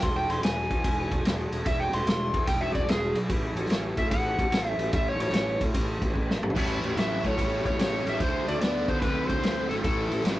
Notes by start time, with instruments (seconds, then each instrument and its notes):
0.02 fingered electric bass E1, tonewheel organ D4 F#4 G#4, electric slide guitar C6, kick, ride
0.16 electric slide guitar G5
0.30 fingered electric bass E1, tonewheel organ D4 F#4 G#4, electric slide guitar C6, ride
0.43 fingered electric bass E1, tonewheel organ D4 F#4 B4, electric slide guitar G#5, snare, ride
0.69 fingered electric bass E2, tonewheel organ D4 F#4 G#4, kick, ride
0.84 fingered electric bass E1, tonewheel organ D4 F#4 B4, kick, ride
1.11 fingered electric bass E1, tonewheel organ D4 F#4 G#4, kick, ride
1.25 fingered electric bass E1, tonewheel organ D4 F#4 G#4, snare, ride
1.51 fingered electric bass E1, tonewheel organ D4 F#4 G#4, ride
1.66 fingered electric bass E1, tonewheel organ D4 F#4 G#4, electric slide guitar E5, kick, ride
1.80 electric slide guitar G5
1.92 fingered electric bass E1, tonewheel organ D4 F#4 B4, electric slide guitar C6, ride
2.05 fingered electric bass E1, tonewheel organ D4 F#4 G#4, snare, ride
2.33 fingered electric bass E2, tonewheel organ D4 F#4 G#4, kick, ride
2.47 fingered electric bass E1, tonewheel organ D4 F#4 G#4, electric slide guitar G5, kick, ride
2.61 electric slide guitar E5
2.75 fingered electric bass E1, tonewheel organ D4 F#4 G#4, electric slide guitar D5, kick, ride
2.88 fingered electric bass E1, tonewheel organ D4 F#4 B4, electric slide guitar G#4, snare, ride
3.14 fingered electric bass B1, tonewheel organ D4 F#4 G#4, ride
3.29 fingered electric bass A1, tonewheel organ C#4 G4 B4, kick, ride
3.55 fingered electric bass A1, tonewheel organ C#4 G4 C#5, ride
3.65 snare
3.69 fingered electric bass A1, tonewheel organ C#4 G4 C#5, snare, ride
3.97 fingered electric bass A2, tonewheel organ C#4 G4 A4, electric slide guitar E5, kick, ride
4.11 fingered electric bass A1, tonewheel organ C#4 G4 B4, electric slide guitar F#5, kick, ride
4.38 fingered electric bass A1, tonewheel organ C#4 G4 A4, kick, ride
4.51 fingered electric bass A1, tonewheel organ C#4 G4 A4, snare, ride
4.69 electric slide guitar E5
4.77 fingered electric bass A1, tonewheel organ C#4 G4 B4, ride
4.93 fingered electric bass A1, tonewheel organ C#4 G4 A4, electric slide guitar E5, kick, ride
5.09 electric slide guitar C#5
5.18 fingered electric bass A1, tonewheel organ C#4 G4 B4, ride
5.22 electric slide guitar C#5
5.29 fingered electric bass A1, snare
5.33 tonewheel organ C#4 G4 B4, snare, ride
5.61 fingered electric bass A2, tonewheel organ C#4 G4 C#5, kick, ride
5.73 fingered electric bass A1, tonewheel organ C#4 G4 B4, kick, ride
6.00 fingered electric bass A1, tonewheel organ C#4 G4 B4, kick, ride
6.13 fingered electric bass A1, tonewheel organ C#4 G4 B4, kick
6.30 snare
6.41 fingered electric bass A1, tonewheel organ C#4 G4 B4, mid tom
6.50 floor tom
6.55 fingered electric bass A1, distorted electric guitar A2 E3, tonewheel organ C#4 G4 B4, kick, crash
6.82 fingered electric bass A1, tonewheel organ C#4 G4 C#5, ride
6.96 fingered electric bass A1, distorted electric guitar A2 F#3, tonewheel organ C#4 G4 A4, electric slide guitar E5, snare, ride
7.23 distorted electric guitar A2 F#3, fingered electric bass A2, tonewheel organ C#4 G4 B4, electric slide guitar C#5, kick, ride
7.37 fingered electric bass A1, distorted electric guitar A2 G3, tonewheel organ C#4 G4 B4, kick, ride
7.65 fingered electric bass A1, tonewheel organ C#4 G4 B4, electric slide guitar C#5, kick, ride
7.77 fingered electric bass A1, distorted electric guitar A2 G3, tonewheel organ C#4 G4 A4, snare, ride
7.82 electric slide guitar C#5
8.05 fingered electric bass A1, distorted electric guitar A2 G3, tonewheel organ C#4 G4 C#5, ride
8.09 electric slide guitar E5
8.18 fingered electric bass D2, distorted electric guitar D3 A3, tonewheel organ E4 F#4 C5, electric slide guitar C5, kick, ride
8.45 fingered electric bass D2, tonewheel organ E4 F#4 C5, electric slide guitar D5, ride
8.59 fingered electric bass D2, distorted electric guitar D3 B3, tonewheel organ E4 F#4 D5, electric slide guitar D5, ride
8.63 snare
8.86 distorted electric guitar D3 B3, fingered electric bass D3, tonewheel organ E4 F#4 C5, electric slide guitar C5, kick, ride
8.99 fingered electric bass D2, distorted electric guitar D3, tonewheel organ E4 F#4 C5, electric slide guitar B4, kick, ride
9.03 distorted electric guitar C4
9.27 fingered electric bass D2, tonewheel organ E4 F#4 C5, electric slide guitar C5, kick, ride
9.42 fingered electric bass D2, distorted electric guitar D3 C4, tonewheel organ E4 F#4 B4, snare, ride
9.69 fingered electric bass G#1, distorted electric guitar D3 C4, tonewheel organ E4 F#4 C5, electric slide guitar A4, ride
9.83 fingered electric bass A1, distorted electric guitar A2 E3, tonewheel organ C#4 G4 B4, electric slide guitar A4, kick, ride
10.10 fingered electric bass A1, tonewheel organ C#4 G4 A4, ride
10.20 distorted electric guitar A2, tonewheel organ C#4, snare
10.24 fingered electric bass A1, distorted electric guitar F#3, tonewheel organ G4 B4, snare, ride